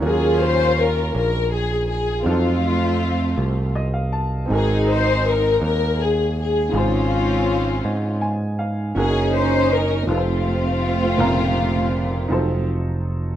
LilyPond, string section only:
\new Staff \with { instrumentName = "String section" } { \time 6/8 \key f \phrygian \tempo 4. = 54 << { aes'8 c''8 bes'8 bes'8 aes'8 aes'8 | f'2 r4 | aes'8 c''8 bes'8 bes'8 aes'8 aes'8 | f'2 r4 |
aes'8 c''8 bes'8 f'4.~ | f'2 r4 | } \\ { <des' f'>4. r4. | <a c'>2 r4 | <c' ees'>4. r4. | <c' des'>2 r4 |
<des' ees'>4. <a c'>4.~ | <a c'>2 r4 | } >> }